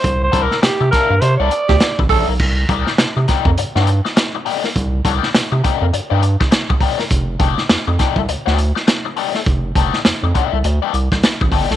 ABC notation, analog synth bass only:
X:1
M:4/4
L:1/16
Q:"Swing 16ths" 1/4=102
K:Cdor
V:1 name="Analog synth bass" clef=bass
C,,2 C,, z C, C, z G,, C, C,, z D,, z A,,, B,,, =B,,, | C,,2 C,, z C, C, z F,, G,, G,,2 z4 z | C,,2 C,, z C, C, z F,, G,, G,,2 z4 z | F,,,2 F,,, z F,, F,, z C,, D,, D,,2 z4 z |
F,,,2 F,,, z F,, F,, z C,, D,, z C,, C,, z A,,, G,,, =B,,, |]